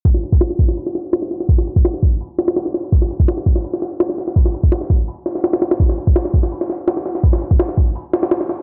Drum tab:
HH |o-o-o-o-o-o-o-o-|o-o-o-o-o-ooo-ox|o-o-o-o-o-o-o-o-|o-o-o-o-o-o-oooo|
SD |-o--oo-o-oo-oooo|-o--oo----ooooo-|-o--oo-o-oo-oooo|-o--oo----oooooo|
BD |o--o--o---------|o--o--o---------|o--o--o---------|o--o--o---------|

HH |o-o-o-o-o-o-o-o-|o-o-o-o-o-ooo-ox|
SD |-o--oo-o-oo-oooo|-o--oo----ooooo-|
BD |o--o--o---------|o--o--o---------|